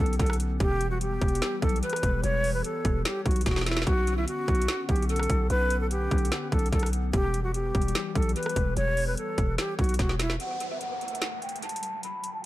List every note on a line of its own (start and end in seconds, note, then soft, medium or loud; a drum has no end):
0.00 0.19 B1 loud
0.00 0.57 D3 medium
0.00 3.83 B3 medium
0.00 0.57 C#4 medium
0.00 0.15 A4 medium
0.00 0.57 F#5 medium
0.06 closed hi-hat medium
0.13 closed hi-hat medium
0.19 0.59 B1 loud
0.19 0.35 A4 medium
0.19 kick loud
0.19 closed hi-hat medium
0.26 cross-stick loud
0.26 closed hi-hat medium
0.33 closed hi-hat medium
0.40 closed hi-hat medium
0.60 1.19 E1 loud
0.60 3.84 E3 medium
0.60 3.84 G3 medium
0.60 0.89 G4 loud
0.60 3.84 G4 medium
0.60 kick loud
0.60 closed hi-hat medium
0.81 closed hi-hat medium
0.91 0.99 F#4 medium
1.01 1.59 G4 medium
1.01 closed hi-hat medium
1.21 1.41 E1 loud
1.21 kick loud
1.21 closed hi-hat soft
1.28 closed hi-hat medium
1.35 closed hi-hat medium
1.42 snare loud
1.42 closed hi-hat medium
1.62 1.82 B1 loud
1.62 1.78 A4 medium
1.62 kick medium
1.62 closed hi-hat soft
1.69 closed hi-hat medium
1.76 closed hi-hat medium
1.83 2.21 B4 medium
1.83 closed hi-hat medium
1.90 cross-stick loud
1.90 closed hi-hat medium
1.96 closed hi-hat medium
2.03 2.23 E1 loud
2.03 kick loud
2.03 closed hi-hat medium
2.23 2.63 E1 loud
2.23 2.52 C#5 loud
2.23 closed hi-hat medium
2.44 open hi-hat medium
2.54 2.62 B4 medium
2.64 3.03 A4 medium
2.64 closed hi-hat medium
2.85 3.04 E1 loud
2.85 kick loud
2.85 closed hi-hat medium
3.05 3.21 G4 medium
3.05 snare loud
3.05 closed hi-hat medium
3.26 3.45 B1 loud
3.26 3.42 F#4 medium
3.26 kick medium
3.26 closed hi-hat soft
3.31 closed hi-hat medium
3.36 closed hi-hat medium
3.41 closed hi-hat medium
3.46 3.85 E1 loud
3.46 3.62 F#4 medium
3.46 kick loud
3.46 snare medium
3.46 closed hi-hat medium
3.51 snare medium
3.56 snare medium
3.61 snare medium
3.66 3.82 E4 medium
3.66 snare loud
3.66 closed hi-hat medium
3.71 snare medium
3.77 snare loud
3.82 snare loud
3.87 4.26 B1 loud
3.87 7.10 D3 medium
3.87 10.36 B3 medium
3.87 7.10 C#4 medium
3.87 4.16 F#4 loud
3.87 7.10 F#5 medium
3.87 kick loud
3.87 closed hi-hat medium
4.07 closed hi-hat medium
4.17 4.25 E4 medium
4.28 4.85 F#4 medium
4.28 closed hi-hat medium
4.48 4.68 B1 loud
4.48 kick loud
4.48 closed hi-hat soft
4.55 closed hi-hat medium
4.62 closed hi-hat medium
4.68 snare loud
4.68 closed hi-hat medium
4.89 5.28 B1 loud
4.89 5.05 G4 medium
4.89 kick loud
4.89 closed hi-hat soft
4.96 closed hi-hat medium
5.02 closed hi-hat medium
5.09 5.48 A4 medium
5.09 closed hi-hat medium
5.16 cross-stick loud
5.16 closed hi-hat medium
5.23 closed hi-hat medium
5.30 5.49 B1 loud
5.30 kick loud
5.30 closed hi-hat medium
5.50 6.09 B1 loud
5.50 5.79 B4 loud
5.50 closed hi-hat medium
5.70 closed hi-hat medium
5.81 5.89 A4 medium
5.91 6.48 G4 medium
5.91 closed hi-hat medium
6.11 6.31 B1 loud
6.11 kick loud
6.11 closed hi-hat soft
6.18 closed hi-hat medium
6.25 closed hi-hat medium
6.32 snare loud
6.32 closed hi-hat medium
6.52 6.72 B1 loud
6.52 6.68 A4 medium
6.52 kick loud
6.52 closed hi-hat medium
6.59 closed hi-hat medium
6.66 closed hi-hat medium
6.72 7.12 B1 loud
6.72 6.89 A4 medium
6.72 kick loud
6.72 closed hi-hat medium
6.79 cross-stick loud
6.79 closed hi-hat medium
6.86 closed hi-hat medium
6.93 closed hi-hat medium
7.13 7.72 E1 loud
7.13 10.37 E3 medium
7.13 10.37 G3 medium
7.13 7.42 G4 loud
7.13 10.37 G4 medium
7.13 kick loud
7.13 closed hi-hat medium
7.34 closed hi-hat medium
7.44 7.52 F#4 medium
7.54 8.12 G4 medium
7.54 closed hi-hat medium
7.75 7.94 E1 loud
7.75 kick loud
7.75 closed hi-hat soft
7.82 closed hi-hat medium
7.88 closed hi-hat medium
7.95 snare loud
7.95 closed hi-hat medium
8.15 8.35 B1 loud
8.15 8.31 A4 medium
8.15 kick loud
8.15 closed hi-hat soft
8.22 closed hi-hat medium
8.29 closed hi-hat medium
8.36 8.74 B4 medium
8.36 closed hi-hat medium
8.43 cross-stick loud
8.43 closed hi-hat medium
8.49 closed hi-hat medium
8.56 8.76 E1 loud
8.56 kick loud
8.56 closed hi-hat medium
8.77 9.16 E1 loud
8.77 9.05 C#5 loud
8.77 closed hi-hat medium
8.97 open hi-hat medium
9.07 9.15 B4 medium
9.17 9.56 A4 medium
9.17 closed hi-hat medium
9.38 9.58 E1 loud
9.38 kick medium
9.38 closed hi-hat medium
9.58 9.74 G4 medium
9.58 snare loud
9.58 closed hi-hat medium
9.79 9.98 B1 loud
9.79 9.95 F#4 medium
9.79 kick medium
9.79 closed hi-hat soft
9.84 closed hi-hat medium
9.89 closed hi-hat medium
9.94 closed hi-hat medium
9.99 10.38 E1 loud
9.99 10.15 F#4 medium
9.99 kick loud
9.99 snare medium
9.99 closed hi-hat medium
10.09 snare medium
10.19 10.36 E4 medium
10.19 snare loud
10.19 closed hi-hat medium
10.30 snare loud
10.40 10.69 F#5 loud
10.40 closed hi-hat medium
10.40 downlifter medium
10.60 closed hi-hat medium
10.71 10.79 E5 medium
10.81 11.38 F#5 medium
10.81 closed hi-hat medium
11.01 closed hi-hat soft
11.08 closed hi-hat medium
11.15 closed hi-hat medium
11.22 snare loud
11.22 closed hi-hat medium
11.42 11.58 G5 medium
11.42 closed hi-hat soft
11.49 closed hi-hat medium
11.56 closed hi-hat medium
11.62 12.01 A5 medium
11.62 closed hi-hat medium
11.69 closed hi-hat medium
11.76 closed hi-hat medium
11.83 closed hi-hat medium
12.03 12.32 B5 loud
12.03 closed hi-hat medium
12.24 closed hi-hat medium
12.34 12.42 A5 medium